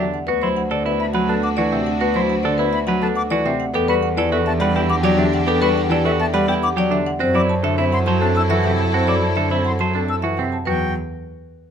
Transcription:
Already playing: E2
0.00 D3 D4 E5
0.14 F#5
0.27 D2 B3 D4 F#4 B4
0.42 F#3 E4 C5 C6
0.56 F#5
0.71 D3 A4 D5
0.85 B3 E4 B4 E5
1.00 E5 B5
1.14 F#3 B4 F#5
1.28 B3 D4 A4 A5
1.43 F#5 D6
1.57 E3 F#4 D5
1.72 C3 C4 E5
1.86 F#5
2.01 B3 F#4 B4
2.14 F#3 E4 C5 C6
2.29 F#5
2.43 D3 A4 D5
2.58 B3 E4 B4 E5
2.73 E5 B5
2.87 F#3 B4 F#5
3.02 B3 D4 A4 A5
3.15 F#5 D6
3.30 E3 F#4 D5
3.45 C3 C4 E5
3.60 F#5
3.74 E2 B3 D4 G4 A4
3.88 G3 F#4 B4 B5
4.03 F#5
4.17 E3 A4 D5
4.31 B3 F#4 A4 E5
4.46 E5 A5
4.60 G3 B4 F#5
4.75 B3 E4 G4 G5
4.90 F#5 D6
5.03 F#3 G4 D5
5.18 D3 D4 E5
5.33 F#5
5.47 B3 G4 A4
5.61 G3 F#4 B4 B5
5.77 F#5
5.89 E3 A4 D5
6.04 B3 F#4 A4 E5
6.20 E5 A5
6.34 G3 B4 F#5
6.48 B3 E4 G4 G5
6.63 F#5 D6
6.76 F#3 G4 D5
6.91 D3 D4 E5
7.06 F#5
7.19 F#2 C4 E4 F#4 A4 C5
7.34 F#3 E4 D5 D6
7.49 A5
7.63 D3 A4 E5
7.77 C4 E4 C5 E5
7.92 F#5 C6
8.06 F#3 C5 A5
8.21 C4 D4 A4 A5
8.35 A5 E6
8.50 E3 F#4 E5
8.63 C3 C4 E5 F#5
8.78 A5
8.92 C4 F#4 C5
9.07 F#3 E4 D5 D6
9.22 A5
9.36 D3 A4 E5
9.50 C4 E4 C5 E5
9.65 F#5 C6
9.79 F#3 C5 A5
9.94 C4 D4 A4 A5
10.08 A5 E6
10.22 E3 F#4 E5
10.37 C3 C4 E5 F#5
10.52 A5
10.65 E2 F#3 F#4 B4 G5

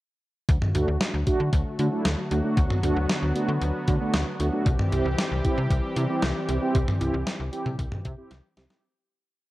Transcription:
0.49 D2 D3 F#3 A3 F#4, kick, closed hi-hat
0.62 mid tom
0.75 D2 A3 D4 F#4, closed hi-hat
0.88 D2
1.01 snare, closed hi-hat
1.14 D2
1.27 A3 D4 F#4, kick, closed hi-hat
1.40 D3
1.53 D2, kick, closed hi-hat
1.79 D3 A3 D4 F#4, closed hi-hat
1.92 A3 D4 E4
2.05 D2, snare, closed hi-hat
2.31 D2 A3 D4 F#4, closed hi-hat
2.44 A3 D4 F#4
2.57 D2 B3, kick, closed hi-hat
2.71 mid tom
2.83 D2 A3 D4 F#4, closed hi-hat
2.96 D2
3.09 snare, closed hi-hat
3.22 D2
3.36 A3 D4 F#4, closed hi-hat
3.49 D3
3.62 D2, closed hi-hat
3.88 D3 A3 D4 F#4, kick, closed hi-hat
4.01 A3 D4 F#4
4.14 D2, snare, closed hi-hat
4.40 D2 A3 D4 F#4, closed hi-hat
4.53 A3 D4 F#4
4.66 C2 E3 G3 C4 G4, kick, closed hi-hat
4.79 mid tom
4.92 C2 C4 E4 G4, closed hi-hat
5.05 C2
5.18 snare, closed hi-hat
5.31 C2
5.44 C4 E4 G4, kick, closed hi-hat
5.57 C3
5.70 C2, kick, closed hi-hat
5.96 C3 C4 E4 G4, closed hi-hat
6.09 C4 E4 G4
6.22 C2, snare, closed hi-hat
6.49 C2 C4 E4 G4, closed hi-hat
6.62 C4 E4 G4
6.75 C2, kick, closed hi-hat
6.88 mid tom
7.01 C2 C4 E4 G4, closed hi-hat
7.14 C2
7.27 snare, closed hi-hat
7.40 C2
7.53 C4 E4 G4, closed hi-hat
7.66 C3, mid tom
7.79 C2, kick, closed hi-hat
7.92 mid tom
8.05 C3 C4 E4 G4, kick, closed hi-hat
8.18 C4 E4 G4
8.31 C2, snare, closed hi-hat
8.57 C2 C4 E4 G4, snare, closed hi-hat
8.70 C4 E4 G4, snare

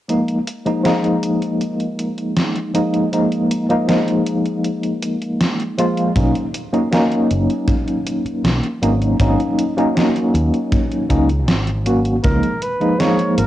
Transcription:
0.08 F3 G#3 A#3 D#4, closed hi-hat
0.28 closed hi-hat
0.47 closed hi-hat
0.65 F3 G#3 A#3 D#4, closed hi-hat
0.83 F3 G#3 A#3 D#4, snare, closed hi-hat
1.04 closed hi-hat
1.23 closed hi-hat
1.42 closed hi-hat
1.61 closed hi-hat
1.80 closed hi-hat
1.99 closed hi-hat
2.18 closed hi-hat
2.37 snare, closed hi-hat
2.56 closed hi-hat
2.74 F3 G#3 A#3 D#4, closed hi-hat
2.94 closed hi-hat
3.12 F3 G#3 A#3 D#4, closed hi-hat
3.32 closed hi-hat
3.51 closed hi-hat
3.69 F3 G#3 A#3 D#4, closed hi-hat
3.87 F3 G#3 A#3 D#4, snare, closed hi-hat
4.08 closed hi-hat
4.26 closed hi-hat
4.46 closed hi-hat
4.64 closed hi-hat
4.83 closed hi-hat
5.03 closed hi-hat
5.22 closed hi-hat
5.41 snare, closed hi-hat
5.60 closed hi-hat
5.78 F3 G#3 A#3 F4, closed hi-hat
5.97 closed hi-hat
6.15 B1 F#3 A#3 C#4 D#4, kick, closed hi-hat
6.35 closed hi-hat
6.54 closed hi-hat
6.73 F#3 A#3 C#4 D#4, closed hi-hat
6.91 F#3 A#3 C#4 D#4, snare, closed hi-hat
7.12 closed hi-hat
7.31 F#1, closed hi-hat
7.50 closed hi-hat
7.68 kick, closed hi-hat
7.88 closed hi-hat
8.07 closed hi-hat
8.25 muted fingered electric bass stroke, closed hi-hat
8.44 B1, snare, closed hi-hat
8.64 closed hi-hat
8.82 G#1 F#3 A#3 C#4 D#4, closed hi-hat
9.02 closed hi-hat
9.19 G#1 F#3 A#3 C#4 D#4, kick, closed hi-hat
9.40 closed hi-hat
9.59 closed hi-hat
9.77 F#3 A#3 C#4 D#4, closed hi-hat
9.95 F#3 A#3 C#4 D#4, snare, closed hi-hat
10.16 closed hi-hat
10.34 D#2, closed hi-hat
10.54 closed hi-hat
10.72 kick, closed hi-hat
10.92 closed hi-hat
11.09 C#2 F#3 A#3 C#4 D#4, kick, closed hi-hat
11.29 closed hi-hat
11.48 G#1, snare, closed hi-hat
11.67 closed hi-hat
11.85 F#3 A#3 C#4 F#4, closed hi-hat
12.05 closed hi-hat
12.23 C#2 F3 G#3 A#3 D#4 A#4, kick, closed hi-hat
12.43 closed hi-hat
12.62 B4, closed hi-hat
12.80 F3 G#3 A#3 D#4, closed hi-hat
12.98 F3 G#3 A#3 D#4 C#5, snare, closed hi-hat
13.19 closed hi-hat
13.38 G#1 A#4, closed hi-hat

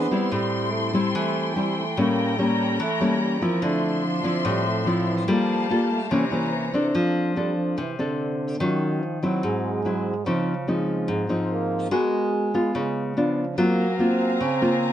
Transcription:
Already playing: E3 B3 D4 G#4 E5 C6
0.11 G3 C4 E4
0.32 A2 G3 E4 A4 G5
0.73 A3
0.94 G3 C4 E4
1.14 E3 A3
1.56 G3 C4 E4
1.77 A3
1.97 A2 G3 A#3 C#4 A4 A#5
2.39 G3 A#3 C#4
2.80 E3 A3
3.01 G3 A#3 C#4
3.21 G3
3.41 F3 A#3 C4 E4
3.62 D3 A3 D4 E5 C6
4.05 F3
4.24 F3 C4 E4
4.45 A2 G3
4.67 A3
4.86 F3 C4 E4
5.08 E3
5.28 F3 G3 A#3 F4 G4 A4 F5 A5
5.70 G3 A#3 F4 A4
5.92 A3
6.11 C3 E3 G3 A#3 C#4 E4 C5 C#5 A#5
6.31 E3 A#3 C#4
6.53 E3
6.74 C4 D4 A4
6.95 F3
7.36 G3 C4 D4 A4
7.56 F3
7.78 C3 E3
7.99 D3 C4 D4 A4
8.60 D#3 F#3 C#4 F4
9.02 F3
9.23 F#3 C4 E4
9.43 G#2 G#3
9.85 F#3 C4 E4
10.26 C#3 F3 C4 D#4
10.68 F3 G#3 C4 D#4
11.08 G#2
11.29 F3 C4 D#4
11.50 A#3
11.91 G#3 B3 F#4 A#4
12.54 B3 F4
12.75 C#3 G#3
13.17 F3 B3 D4 F4
13.58 F#3 A#3 C4 F4 C5 F5 G#5 A#5
13.99 A#3 C4 F4
14.41 C#3
14.61 A#3 C4 F4

